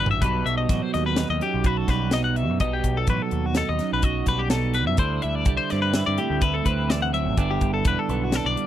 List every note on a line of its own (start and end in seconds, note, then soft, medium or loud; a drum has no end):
0.00 0.10 G1 medium
0.00 0.20 G2 medium
0.00 0.19 E3 medium
0.00 0.22 G3 soft
0.00 0.20 D4 soft
0.00 0.24 F#4 medium
0.00 0.10 B4 medium
0.06 floor tom medium
0.10 0.20 A1 medium
0.10 0.23 E5 medium
0.21 0.42 B1 medium
0.21 1.41 B2 medium
0.21 0.69 F#3 medium
0.21 1.44 G3 medium
0.21 1.17 D#4 medium
0.21 1.66 A4 medium
0.21 0.46 B4 medium
0.21 kick medium
0.21 closed hi-hat medium
0.45 0.65 B1 medium
0.45 0.57 E5 medium
0.45 closed hi-hat medium
0.58 0.82 D#5 medium
0.69 0.79 A1 medium
0.69 2.58 F#3 medium
0.69 kick medium
0.69 snare soft
0.69 closed hi-hat medium
0.82 0.93 C5 medium
0.94 1.24 D#2 medium
0.94 1.06 D#5 medium
0.94 snare soft
0.94 closed hi-hat medium
1.06 1.30 B4 medium
1.16 2.13 D#4 medium
1.16 snare medium
1.16 closed hi-hat medium
1.30 1.40 D#2 medium
1.30 1.42 D#5 medium
1.41 2.13 F#2 medium
1.41 1.66 G4 medium
1.41 closed hi-hat medium
1.54 1.83 B1 medium
1.64 2.58 F#4 medium
1.64 1.77 B4 medium
1.64 kick medium
1.64 closed hi-hat medium
1.77 1.89 A4 medium
1.88 2.49 B1 medium
1.88 3.84 G3 soft
1.88 2.13 B4 medium
1.88 kick medium
1.88 snare soft
1.88 closed hi-hat medium
2.11 2.58 B2 medium
2.11 2.59 D#4 medium
2.11 2.24 D#5 medium
2.11 snare medium
2.11 closed hi-hat medium
2.24 2.36 F#5 medium
2.36 2.60 E5 medium
2.36 closed hi-hat medium
2.49 2.59 F#2 medium
2.60 2.80 B1 medium
2.60 3.81 B2 medium
2.60 3.55 D#4 soft
2.60 2.73 D#5 medium
2.60 kick medium
2.60 closed hi-hat medium
2.73 2.97 G4 medium
2.84 3.04 B1 medium
2.84 kick medium
2.84 closed hi-hat medium
2.97 3.09 A4 medium
3.07 3.18 A1 medium
3.07 4.97 F#3 medium
3.07 3.22 B4 medium
3.07 kick medium
3.07 closed hi-hat medium
3.22 3.46 A4 medium
3.31 3.62 D#2 medium
3.31 closed hi-hat medium
3.46 3.57 F#4 medium
3.55 4.52 D#4 medium
3.55 3.69 A4 medium
3.55 snare medium
3.55 closed hi-hat medium
3.69 3.79 D#2 medium
3.69 3.93 D#5 medium
3.79 4.52 F#2 medium
3.79 snare soft
3.79 closed hi-hat medium
3.93 4.22 B1 medium
3.93 4.04 B4 medium
4.02 4.97 F#4 medium
4.02 4.28 D#5 medium
4.02 kick medium
4.02 closed hi-hat medium
4.26 4.88 B1 medium
4.26 5.46 G3 soft
4.26 4.40 B4 medium
4.26 kick medium
4.26 closed hi-hat medium
4.39 4.50 G4 medium
4.50 4.96 B2 medium
4.50 4.97 D#4 medium
4.50 4.75 A4 medium
4.50 snare medium
4.50 closed hi-hat medium
4.74 4.87 B4 medium
4.74 closed hi-hat medium
4.87 4.97 F#2 medium
4.87 4.99 E5 medium
4.97 5.18 D2 medium
4.97 6.90 D3 medium
4.97 5.95 E4 medium
4.97 5.22 C5 medium
4.97 kick medium
4.97 closed hi-hat medium
5.22 5.44 D2 medium
5.22 5.35 E5 medium
5.22 closed hi-hat medium
5.35 5.57 D5 medium
5.45 5.56 C2 medium
5.45 7.38 G3 medium
5.45 kick loud
5.45 closed hi-hat medium
5.57 5.70 C5 medium
5.70 6.01 G2 medium
5.70 6.67 C4 medium
5.70 5.82 D5 medium
5.70 snare soft
5.70 closed hi-hat medium
5.82 6.06 B4 medium
5.93 6.43 E4 medium
5.93 snare medium
5.93 closed hi-hat medium
6.06 6.17 G2 medium
6.06 6.19 D5 medium
6.18 7.38 A2 medium
6.18 6.42 G4 medium
6.18 closed hi-hat medium
6.30 6.60 D2 medium
6.41 7.39 E4 medium
6.41 6.55 B4 medium
6.41 kick medium
6.41 closed hi-hat medium
6.54 6.66 A4 medium
6.65 7.28 D2 medium
6.65 7.36 C4 soft
6.65 6.90 B4 medium
6.65 kick medium
6.65 closed hi-hat medium
6.90 7.13 E3 medium
6.90 7.02 D5 medium
6.90 snare loud
6.90 closed hi-hat medium
7.02 7.13 F#5 medium
7.13 7.38 F#3 medium
7.13 7.38 E5 medium
7.13 closed hi-hat soft
7.26 7.36 A1 medium
7.37 7.57 G1 medium
7.37 8.55 G2 medium
7.37 7.86 D3 medium
7.37 8.09 B3 medium
7.37 8.33 D4 medium
7.37 8.67 E4 medium
7.37 7.50 D5 medium
7.37 kick medium
7.37 closed hi-hat medium
7.51 7.73 G4 medium
7.61 7.81 G1 medium
7.61 kick medium
7.61 closed hi-hat medium
7.74 7.86 A4 medium
7.85 7.95 E1 medium
7.85 8.67 D3 medium
7.85 7.99 B4 medium
7.85 kick loud
7.85 closed hi-hat medium
7.99 8.24 A4 medium
8.09 8.39 B1 medium
8.09 8.67 B3 medium
8.09 closed hi-hat medium
8.24 8.35 F#4 medium
8.32 8.67 D4 medium
8.32 8.47 A4 medium
8.32 snare medium
8.32 closed hi-hat medium
8.45 8.55 B1 medium
8.45 8.67 D5 medium
8.57 8.67 G2 soft
8.57 closed hi-hat medium